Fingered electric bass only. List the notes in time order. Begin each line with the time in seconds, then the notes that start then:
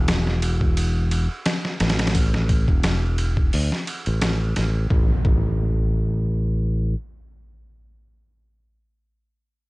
Already playing: E1
1.81 A1
2.68 E1
3.54 D2
4.07 A1
4.57 A1
4.91 A1
5.25 A1